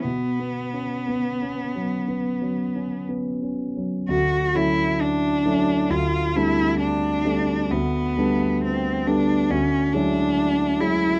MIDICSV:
0, 0, Header, 1, 3, 480
1, 0, Start_track
1, 0, Tempo, 1022147
1, 26, Time_signature, 4, 2, 24, 8
1, 986, Tempo, 996678
1, 1946, Tempo, 907716
1, 4346, Tempo, 872093
1, 5758, End_track
2, 0, Start_track
2, 0, Title_t, "Cello"
2, 0, Program_c, 0, 42
2, 27, Note_on_c, 0, 59, 53
2, 1443, Note_off_c, 0, 59, 0
2, 1948, Note_on_c, 0, 66, 63
2, 2194, Note_on_c, 0, 64, 69
2, 2202, Note_off_c, 0, 66, 0
2, 2432, Note_on_c, 0, 62, 64
2, 2440, Note_off_c, 0, 64, 0
2, 2904, Note_on_c, 0, 65, 61
2, 2912, Note_off_c, 0, 62, 0
2, 3144, Note_on_c, 0, 64, 70
2, 3152, Note_off_c, 0, 65, 0
2, 3374, Note_off_c, 0, 64, 0
2, 3377, Note_on_c, 0, 62, 66
2, 3863, Note_on_c, 0, 59, 61
2, 3871, Note_off_c, 0, 62, 0
2, 4346, Note_off_c, 0, 59, 0
2, 4350, Note_on_c, 0, 60, 59
2, 4587, Note_on_c, 0, 62, 60
2, 4595, Note_off_c, 0, 60, 0
2, 4825, Note_on_c, 0, 61, 62
2, 4833, Note_off_c, 0, 62, 0
2, 5058, Note_on_c, 0, 62, 68
2, 5066, Note_off_c, 0, 61, 0
2, 5543, Note_on_c, 0, 64, 69
2, 5552, Note_off_c, 0, 62, 0
2, 5758, Note_off_c, 0, 64, 0
2, 5758, End_track
3, 0, Start_track
3, 0, Title_t, "Grand piano"
3, 0, Program_c, 1, 0
3, 0, Control_c, 1, 64, 127
3, 21, Note_on_c, 1, 47, 38
3, 35, Control_c, 1, 64, 0
3, 125, Control_c, 1, 64, 127
3, 185, Note_on_c, 1, 59, 27
3, 345, Note_on_c, 1, 61, 27
3, 444, Note_off_c, 1, 59, 0
3, 507, Note_on_c, 1, 59, 27
3, 604, Note_off_c, 1, 61, 0
3, 666, Note_on_c, 1, 61, 31
3, 765, Note_off_c, 1, 59, 0
3, 824, Note_on_c, 1, 54, 28
3, 922, Note_off_c, 1, 61, 0
3, 965, Note_off_c, 1, 47, 0
3, 978, Note_on_c, 1, 59, 29
3, 1079, Note_off_c, 1, 54, 0
3, 1139, Note_on_c, 1, 54, 31
3, 1235, Note_off_c, 1, 59, 0
3, 1302, Note_on_c, 1, 61, 28
3, 1395, Note_off_c, 1, 54, 0
3, 1462, Note_on_c, 1, 59, 28
3, 1558, Note_off_c, 1, 61, 0
3, 1624, Note_on_c, 1, 61, 26
3, 1724, Note_off_c, 1, 59, 0
3, 1790, Note_on_c, 1, 54, 25
3, 1886, Note_off_c, 1, 61, 0
3, 1944, Note_on_c, 1, 38, 46
3, 1947, Note_off_c, 1, 54, 0
3, 1956, Control_c, 1, 64, 0
3, 2050, Control_c, 1, 64, 127
3, 2185, Note_off_c, 1, 38, 0
3, 2187, Note_on_c, 1, 54, 32
3, 2190, Note_on_c, 1, 57, 34
3, 2192, Note_on_c, 1, 61, 35
3, 2195, Note_on_c, 1, 64, 39
3, 2643, Note_off_c, 1, 54, 0
3, 2644, Note_off_c, 1, 57, 0
3, 2646, Note_off_c, 1, 61, 0
3, 2647, Note_off_c, 1, 64, 0
3, 2666, Note_on_c, 1, 54, 34
3, 2666, Note_on_c, 1, 57, 34
3, 2672, Note_on_c, 1, 61, 34
3, 2672, Note_on_c, 1, 64, 37
3, 2881, Note_off_c, 1, 54, 0
3, 2881, Note_off_c, 1, 57, 0
3, 2883, Note_off_c, 1, 61, 0
3, 2884, Note_off_c, 1, 64, 0
3, 2900, Note_on_c, 1, 38, 47
3, 2911, Control_c, 1, 64, 0
3, 2997, Control_c, 1, 64, 127
3, 3132, Note_off_c, 1, 38, 0
3, 3138, Note_on_c, 1, 55, 35
3, 3142, Note_on_c, 1, 57, 35
3, 3143, Note_on_c, 1, 60, 36
3, 3143, Note_on_c, 1, 62, 41
3, 3597, Note_off_c, 1, 55, 0
3, 3599, Note_off_c, 1, 57, 0
3, 3600, Note_off_c, 1, 60, 0
3, 3600, Note_off_c, 1, 62, 0
3, 3613, Note_on_c, 1, 55, 34
3, 3615, Note_on_c, 1, 57, 34
3, 3618, Note_on_c, 1, 60, 31
3, 3619, Note_on_c, 1, 62, 37
3, 3839, Note_off_c, 1, 55, 0
3, 3839, Note_off_c, 1, 57, 0
3, 3841, Note_off_c, 1, 60, 0
3, 3841, Note_off_c, 1, 62, 0
3, 3857, Note_on_c, 1, 38, 48
3, 3873, Control_c, 1, 64, 0
3, 3971, Control_c, 1, 64, 127
3, 4096, Note_off_c, 1, 38, 0
3, 4103, Note_on_c, 1, 55, 36
3, 4105, Note_on_c, 1, 57, 38
3, 4108, Note_on_c, 1, 59, 37
3, 4110, Note_on_c, 1, 62, 39
3, 4566, Note_off_c, 1, 55, 0
3, 4567, Note_off_c, 1, 57, 0
3, 4568, Note_off_c, 1, 59, 0
3, 4569, Note_off_c, 1, 62, 0
3, 4586, Note_on_c, 1, 55, 33
3, 4591, Note_on_c, 1, 57, 34
3, 4592, Note_on_c, 1, 59, 33
3, 4595, Note_on_c, 1, 62, 37
3, 4806, Note_off_c, 1, 55, 0
3, 4809, Note_off_c, 1, 57, 0
3, 4809, Note_off_c, 1, 59, 0
3, 4810, Note_off_c, 1, 62, 0
3, 4826, Note_on_c, 1, 38, 49
3, 4840, Control_c, 1, 64, 0
3, 4934, Control_c, 1, 64, 127
3, 5059, Note_off_c, 1, 38, 0
3, 5065, Note_on_c, 1, 56, 36
3, 5067, Note_on_c, 1, 54, 37
3, 5068, Note_on_c, 1, 61, 37
3, 5071, Note_on_c, 1, 64, 40
3, 5522, Note_off_c, 1, 54, 0
3, 5522, Note_off_c, 1, 56, 0
3, 5523, Note_off_c, 1, 61, 0
3, 5524, Note_off_c, 1, 64, 0
3, 5541, Note_on_c, 1, 54, 32
3, 5543, Note_on_c, 1, 56, 35
3, 5546, Note_on_c, 1, 61, 32
3, 5549, Note_on_c, 1, 64, 34
3, 5758, Note_off_c, 1, 54, 0
3, 5758, Note_off_c, 1, 56, 0
3, 5758, Note_off_c, 1, 61, 0
3, 5758, Note_off_c, 1, 64, 0
3, 5758, End_track
0, 0, End_of_file